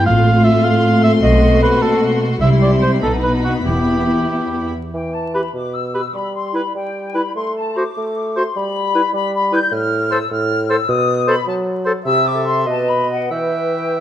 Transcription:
0.06 A1 A2 A3 C4 F4 F5 C6
0.44 E5
0.64 F5
1.04 E5
1.23 B1 B2 F#4 A4 D#5
1.62 B4
1.82 A4
2.41 C2 C3 G3 C4 E4 G4 E5 C6
2.62 D5
2.82 C5
3.02 B1 B2 B3 D#4 A4 B5
3.23 B4
3.44 F#4
3.65 E1 E2 E4 G4
4.94 E3 G5
5.14 A5
5.34 G4 B4 B5
5.54 B2 D6
5.74 E6
5.94 G4 B4
6.14 G3 B5
6.35 C6
6.54 E4 B4 B5
6.74 G3 G5
7.14 E4 B4 B5
7.34 A3 C6
7.55 A5
7.76 F#4 C5 D6
7.97 A3
8.36 F#4 C5 C6
8.56 G3 B5
8.95 E4 B4
9.14 G3 B5
9.34 B5
9.52 E4 B4 G6
9.72 A2 F6
10.11 A4 C5 E6
10.31 A2 F6
10.69 A4 C5 E6
10.89 B2 D#6
11.28 A4 C5 B5
11.47 F#3 A5
11.85 A4 C5
12.05 C3 G4 E5 E6
12.25 D6
12.35 A4
12.46 C6
12.66 B2 B4 D#5 A5
12.88 B5
13.10 F#5
13.31 E3 B4 E5 G5

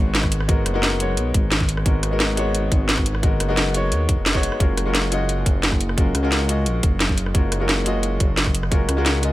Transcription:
Already playing: G#1 G#3 B3 D#4 F#4 A#4 C#5
0.15 snare, closed hi-hat
0.23 kick, cross-stick
0.32 closed hi-hat
0.41 cross-stick
0.48 G#3 B3 D#4 F#4 A#4, kick, closed hi-hat
0.66 F#1, cross-stick, closed hi-hat
0.74 G#3 B3 D#4 F#4 A#4
0.83 snare, closed hi-hat
0.99 G#3 B3 D#4 F#4 C#5, closed hi-hat
1.17 B1, closed hi-hat
1.34 G#1, kick, closed hi-hat
1.52 snare, closed hi-hat
1.60 kick, snare
1.69 closed hi-hat
1.77 cross-stick
1.85 G#1 G#3 B3 D#4 F#4 A#4, kick, closed hi-hat
2.03 cross-stick, closed hi-hat
2.11 G#3 B3 D#4 F#4 A#4
2.20 snare, closed hi-hat
2.36 G#3 B3 D#4 F#4 C#5, closed hi-hat
2.55 closed hi-hat
2.72 G#1, kick, closed hi-hat
2.89 snare, closed hi-hat
2.98 kick, cross-stick
3.06 closed hi-hat
3.15 cross-stick
3.23 G#3 B3 D#4 F#4 A#4, kick, closed hi-hat
3.40 F#1, cross-stick, closed hi-hat
3.48 G#3 B3 D#4 F#4 A#4
3.57 snare, closed hi-hat
3.73 G#3 B3 D#4 F#4 C#5, closed hi-hat
3.92 D#2, closed hi-hat
4.09 kick, closed hi-hat
4.18 F#1
4.26 snare, closed hi-hat
4.34 G#3 B3 D#4 F#4 C#5, kick, snare
4.43 closed hi-hat
4.52 cross-stick
4.60 F#1 G#3 C#4 F4 F#4 A#4, kick, closed hi-hat
4.77 cross-stick, closed hi-hat
4.85 G#3 C#4 F4 F#4 A#4
4.95 snare, closed hi-hat
5.10 G#3 C#4 F4 F#4 D#5, closed hi-hat
5.29 closed hi-hat
5.46 F#1, kick, closed hi-hat
5.63 snare, closed hi-hat
5.72 kick, cross-stick
5.81 closed hi-hat
5.89 cross-stick
5.97 G#3 C#4 F4 F#4 A#4, kick, closed hi-hat
6.15 C#2, cross-stick, closed hi-hat
6.23 G#3 C#4 F4 F#4 A#4
6.32 snare, closed hi-hat
6.47 G#3 C#4 F4 F#4 D#5, closed hi-hat
6.66 A#1, closed hi-hat
6.83 F#1, kick, closed hi-hat
7.00 snare, closed hi-hat
7.09 kick, snare
7.18 closed hi-hat
7.26 cross-stick
7.34 F#1 G#3 C#4 F4 F#4 A#4, kick, closed hi-hat
7.52 cross-stick, closed hi-hat
7.60 G#3 C#4 F4 F#4 A#4
7.69 snare, closed hi-hat
7.84 G#3 C#4 F4 F#4 D#5, closed hi-hat
8.03 closed hi-hat
8.20 F#1, kick, closed hi-hat
8.37 snare, closed hi-hat
8.46 kick, cross-stick
8.55 closed hi-hat
8.63 cross-stick
8.71 G#3 C#4 F4 F#4 A#4, kick, closed hi-hat
8.89 C#2, cross-stick, closed hi-hat
8.97 G#3 C#4 F4 F#4 A#4
9.06 snare, closed hi-hat
9.21 G#3 C#4 F4 F#4 D#5, closed hi-hat

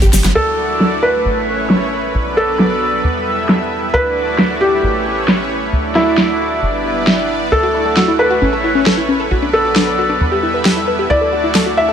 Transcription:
0.02 G1 G4, closed hi-hat, shaker
0.13 G1 G4, snare, open hi-hat, shaker
0.24 G1 B3, snare, closed hi-hat, shaker
0.35 D2 A3 D4 E4 F#4 A4 D5
0.80 snare
1.03 B4
1.25 A1 C#4 E4 B4 C#5
1.70 snare
2.14 B1 F#3 B3 D4 D5
2.37 A4
2.59 snare
3.04 E2 G3 E4 E5
3.49 snare
3.94 D2 A3 D4 F#4 B4 D5
4.38 snare
4.61 G4
4.83 A1 C#4 B4 C#5
5.28 snare
5.73 D2 A3 D4 F#4 D5
5.95 E4, snare
6.17 snare
6.62 G1 G3 B3 B4 D5
7.07 snare
7.52 D2 A3 E4 F#4 A4
7.63 F#4
7.74 E4
7.86 A4
7.97 F#4, snare
8.08 E4
8.19 A4 B4
8.30 F#4
8.41 A1 C#4 B4 C#5
8.53 A4
8.64 E4
8.75 C#4
8.86 A4, snare
8.97 E4
9.09 C#4
9.20 A4
9.31 B1 F#3 B3 D4 F#4 D5
9.42 D4
9.53 A4 B4
9.65 F#4
9.76 D4, snare
9.87 B4
9.98 F#4
10.09 D4
10.20 E2 G3 E4 B4 E5
10.32 G4
10.43 E4
10.54 B4
10.65 G4, snare
10.77 E4
10.88 B4
10.99 G4
11.10 D2 A3 D4 E4 F#4 D5
11.21 A4
11.33 F#4
11.44 E4
11.55 A4, snare
11.66 F#4
11.77 E4 E5
11.89 A4

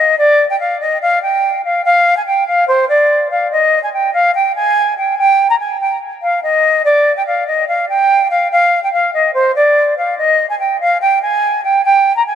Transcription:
Already playing: D#5
0.18 D5
0.50 G5
0.59 F5
0.80 D#5
1.01 F5
1.22 G5
1.64 F5
1.84 F5
2.16 G#5
2.26 G5
2.47 F5
2.68 C5
2.88 D5
3.30 F5
3.51 D#5
3.83 G#5
3.93 G5
4.13 F5
4.34 G5
4.55 G#5
4.97 G5
5.17 G5
5.50 A#5
5.59 G#5
5.80 G5
6.22 F5
6.43 D#5
6.84 D5
7.16 G5
7.26 F5
7.47 D#5
7.68 F5
7.89 G5
8.30 F5
8.51 F5
8.83 G5
8.92 F5
9.13 D#5
9.34 C5
9.55 D5
9.97 F5
10.17 D#5
10.49 G#5
10.59 G5
10.80 F5
11.01 G5
11.22 G#5
11.64 G5
11.85 G5
12.16 A#5
12.26 G#5

